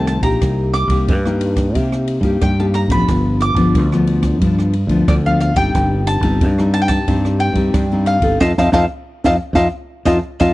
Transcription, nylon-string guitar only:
Already playing: C3 D#3 A3 C4
0.23 A#3 D#4 G4
0.42 C3
0.90 A#3 D#4 G4
1.09 G2
1.26 A#3 D#4 G4
1.75 C3 A#3 D#4 G4
2.24 A#3 D#4 G4
2.42 G2
2.59 A#3 D#4 G4
2.90 F3 B3 D4
3.08 G2
3.56 F3 B3 D4
3.75 D3
3.92 F3 B3 D4
4.41 G2 F3 B3 D4
4.90 F3 B3 D4
5.09 D3
5.26 F3 B3 D4
5.56 G3 C4 D#4
5.75 G2
6.23 G3 C4 D#4
6.42 G2
6.59 G3 C4 D#4
7.08 G2 G3 C4 D#4
7.56 G3 C4 D#4
7.75 G2
7.92 G3 C4 D#4
8.22 C4 D#4 A4
8.41 C4 D#4 F4
8.58 C4 D#4 F4
8.73 C4 D#4 F4
9.24 C4 D#4 F4
9.55 C4 D#4 F4
10.06 C4 D#4 F4
10.40 C4 D#4 F4

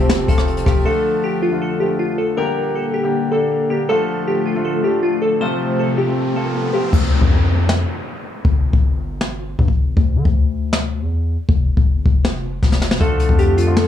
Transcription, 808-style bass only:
Already playing: F1
0.28 F1
0.66 F1
6.93 D2
7.21 F2
8.45 G1
8.73 G1
9.59 G2
9.68 G1
9.97 D2
10.16 D3
10.25 D2
11.01 E2
11.49 F1
11.77 F1
11.96 G1
12.06 F1
12.63 F1
13.01 D2
13.29 F2

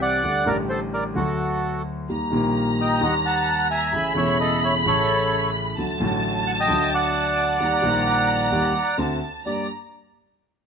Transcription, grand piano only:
Already playing: C2 C3 E3 G3 C4 G4
0.24 D2 D3 G3 A3 G4
0.45 A1 A2 D3 G3 A3
0.49 G4
1.15 D2 D3 F#3 A3 F#4
2.09 D#2 D#3 G3 A#3 G4
2.30 A#1 A#2 D#3 G3 A#3 G4
2.99 D#2 D#3 G3 A#3
3.04 G4
3.93 A1 A2 C#3 E3 A3 E4
4.13 E1 E2 C#3 E3 A3 E4
4.84 A1 A2 C#3 E3 A3 E4
5.78 D2 D3 F#3 A3 F#4
5.98 A1 A2 D3 F#3 A3
6.03 F#4
6.68 D2 D3 F#3 A3 F#4
7.60 D#2 D#3 G3 A#3 G4
7.81 A#1 A#2 D#3 G3 A#3
7.85 G4
8.51 D#2 D#3 G3 A#3 G4
8.98 D2 D3 A3 C4 F#4
9.46 G2 A#3 D4 G4

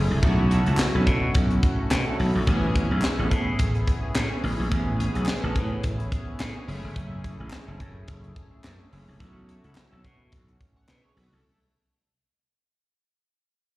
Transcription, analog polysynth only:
Already playing: A3 C#4 E4 G#4
0.22 A3 C#4 E4 F#4
2.46 B3 C#4 E4 G#4
6.67 G#3 C#4 E4 G#4
6.74 A3
9.20 A3 C#4 E4 F#4
10.76 C#5 F#5
10.89 B4 E5
11.04 G#4 C#5
11.17 F#4 B4
11.33 E4 A4

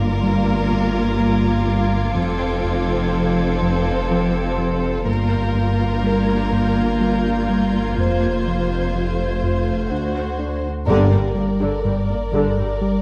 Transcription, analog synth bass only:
0.23 G3
0.73 G2
1.20 G3
1.68 G3
2.15 F2
2.64 F2
3.12 F3
3.62 F2
4.11 F3
4.58 F3
5.06 G2
5.54 G2
6.03 G3
6.52 G2
7.01 G3
7.49 G3
7.98 F2
8.47 F2
8.95 F3
9.43 F2
9.91 D4
10.39 D4
10.88 G2
11.35 G3
11.85 G2
12.33 G2
12.81 G3

